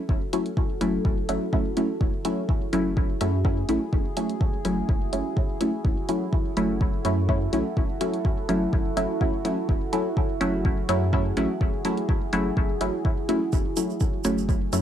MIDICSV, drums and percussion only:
0, 0, Header, 1, 2, 480
1, 0, Start_track
1, 0, Key_signature, 3, "minor"
1, 0, Tempo, 480000
1, 88, Time_signature, 4, 2, 24, 8
1, 14817, End_track
2, 0, Start_track
2, 0, Title_t, "Drums"
2, 88, Note_on_c, 9, 36, 115
2, 188, Note_off_c, 9, 36, 0
2, 328, Note_on_c, 9, 42, 82
2, 428, Note_off_c, 9, 42, 0
2, 456, Note_on_c, 9, 42, 31
2, 556, Note_off_c, 9, 42, 0
2, 568, Note_on_c, 9, 36, 116
2, 668, Note_off_c, 9, 36, 0
2, 809, Note_on_c, 9, 42, 68
2, 909, Note_off_c, 9, 42, 0
2, 1048, Note_on_c, 9, 36, 122
2, 1148, Note_off_c, 9, 36, 0
2, 1288, Note_on_c, 9, 42, 86
2, 1388, Note_off_c, 9, 42, 0
2, 1528, Note_on_c, 9, 36, 110
2, 1628, Note_off_c, 9, 36, 0
2, 1768, Note_on_c, 9, 42, 72
2, 1868, Note_off_c, 9, 42, 0
2, 2007, Note_on_c, 9, 36, 121
2, 2108, Note_off_c, 9, 36, 0
2, 2248, Note_on_c, 9, 42, 81
2, 2348, Note_off_c, 9, 42, 0
2, 2488, Note_on_c, 9, 36, 115
2, 2588, Note_off_c, 9, 36, 0
2, 2728, Note_on_c, 9, 42, 71
2, 2828, Note_off_c, 9, 42, 0
2, 2968, Note_on_c, 9, 36, 122
2, 3068, Note_off_c, 9, 36, 0
2, 3208, Note_on_c, 9, 42, 84
2, 3308, Note_off_c, 9, 42, 0
2, 3448, Note_on_c, 9, 36, 112
2, 3548, Note_off_c, 9, 36, 0
2, 3688, Note_on_c, 9, 42, 71
2, 3788, Note_off_c, 9, 42, 0
2, 3928, Note_on_c, 9, 36, 114
2, 4028, Note_off_c, 9, 36, 0
2, 4168, Note_on_c, 9, 42, 80
2, 4268, Note_off_c, 9, 42, 0
2, 4296, Note_on_c, 9, 42, 32
2, 4396, Note_off_c, 9, 42, 0
2, 4408, Note_on_c, 9, 36, 123
2, 4508, Note_off_c, 9, 36, 0
2, 4649, Note_on_c, 9, 42, 68
2, 4749, Note_off_c, 9, 42, 0
2, 4888, Note_on_c, 9, 36, 122
2, 4988, Note_off_c, 9, 36, 0
2, 5128, Note_on_c, 9, 42, 88
2, 5228, Note_off_c, 9, 42, 0
2, 5368, Note_on_c, 9, 36, 109
2, 5468, Note_off_c, 9, 36, 0
2, 5608, Note_on_c, 9, 42, 73
2, 5708, Note_off_c, 9, 42, 0
2, 5848, Note_on_c, 9, 36, 122
2, 5948, Note_off_c, 9, 36, 0
2, 6088, Note_on_c, 9, 42, 79
2, 6188, Note_off_c, 9, 42, 0
2, 6328, Note_on_c, 9, 36, 111
2, 6428, Note_off_c, 9, 36, 0
2, 6568, Note_on_c, 9, 42, 65
2, 6668, Note_off_c, 9, 42, 0
2, 6808, Note_on_c, 9, 36, 114
2, 6908, Note_off_c, 9, 36, 0
2, 7048, Note_on_c, 9, 42, 79
2, 7148, Note_off_c, 9, 42, 0
2, 7288, Note_on_c, 9, 36, 108
2, 7388, Note_off_c, 9, 36, 0
2, 7528, Note_on_c, 9, 42, 68
2, 7628, Note_off_c, 9, 42, 0
2, 7768, Note_on_c, 9, 36, 110
2, 7868, Note_off_c, 9, 36, 0
2, 8008, Note_on_c, 9, 42, 81
2, 8108, Note_off_c, 9, 42, 0
2, 8135, Note_on_c, 9, 42, 31
2, 8235, Note_off_c, 9, 42, 0
2, 8248, Note_on_c, 9, 36, 110
2, 8348, Note_off_c, 9, 36, 0
2, 8488, Note_on_c, 9, 42, 63
2, 8588, Note_off_c, 9, 42, 0
2, 8728, Note_on_c, 9, 36, 109
2, 8828, Note_off_c, 9, 36, 0
2, 8968, Note_on_c, 9, 42, 82
2, 9068, Note_off_c, 9, 42, 0
2, 9208, Note_on_c, 9, 36, 103
2, 9308, Note_off_c, 9, 36, 0
2, 9449, Note_on_c, 9, 42, 65
2, 9549, Note_off_c, 9, 42, 0
2, 9688, Note_on_c, 9, 36, 106
2, 9788, Note_off_c, 9, 36, 0
2, 9928, Note_on_c, 9, 42, 74
2, 10028, Note_off_c, 9, 42, 0
2, 10168, Note_on_c, 9, 36, 107
2, 10268, Note_off_c, 9, 36, 0
2, 10408, Note_on_c, 9, 42, 64
2, 10508, Note_off_c, 9, 42, 0
2, 10648, Note_on_c, 9, 36, 113
2, 10748, Note_off_c, 9, 36, 0
2, 10888, Note_on_c, 9, 42, 80
2, 10988, Note_off_c, 9, 42, 0
2, 11128, Note_on_c, 9, 36, 101
2, 11228, Note_off_c, 9, 36, 0
2, 11368, Note_on_c, 9, 42, 63
2, 11468, Note_off_c, 9, 42, 0
2, 11608, Note_on_c, 9, 36, 108
2, 11708, Note_off_c, 9, 36, 0
2, 11848, Note_on_c, 9, 42, 79
2, 11948, Note_off_c, 9, 42, 0
2, 11975, Note_on_c, 9, 42, 31
2, 12075, Note_off_c, 9, 42, 0
2, 12088, Note_on_c, 9, 36, 115
2, 12188, Note_off_c, 9, 36, 0
2, 12327, Note_on_c, 9, 42, 64
2, 12427, Note_off_c, 9, 42, 0
2, 12568, Note_on_c, 9, 36, 106
2, 12668, Note_off_c, 9, 36, 0
2, 12807, Note_on_c, 9, 42, 82
2, 12907, Note_off_c, 9, 42, 0
2, 13048, Note_on_c, 9, 36, 104
2, 13148, Note_off_c, 9, 36, 0
2, 13288, Note_on_c, 9, 42, 69
2, 13388, Note_off_c, 9, 42, 0
2, 13524, Note_on_c, 9, 82, 46
2, 13528, Note_on_c, 9, 36, 118
2, 13624, Note_off_c, 9, 82, 0
2, 13628, Note_off_c, 9, 36, 0
2, 13764, Note_on_c, 9, 82, 99
2, 13768, Note_on_c, 9, 42, 82
2, 13864, Note_off_c, 9, 82, 0
2, 13868, Note_off_c, 9, 42, 0
2, 13898, Note_on_c, 9, 82, 41
2, 13998, Note_off_c, 9, 82, 0
2, 14001, Note_on_c, 9, 82, 49
2, 14008, Note_on_c, 9, 36, 111
2, 14101, Note_off_c, 9, 82, 0
2, 14108, Note_off_c, 9, 36, 0
2, 14241, Note_on_c, 9, 82, 97
2, 14248, Note_on_c, 9, 42, 70
2, 14341, Note_off_c, 9, 82, 0
2, 14348, Note_off_c, 9, 42, 0
2, 14381, Note_on_c, 9, 82, 41
2, 14481, Note_off_c, 9, 82, 0
2, 14488, Note_on_c, 9, 36, 113
2, 14492, Note_on_c, 9, 82, 45
2, 14588, Note_off_c, 9, 36, 0
2, 14592, Note_off_c, 9, 82, 0
2, 14728, Note_on_c, 9, 42, 85
2, 14728, Note_on_c, 9, 82, 94
2, 14817, Note_off_c, 9, 42, 0
2, 14817, Note_off_c, 9, 82, 0
2, 14817, End_track
0, 0, End_of_file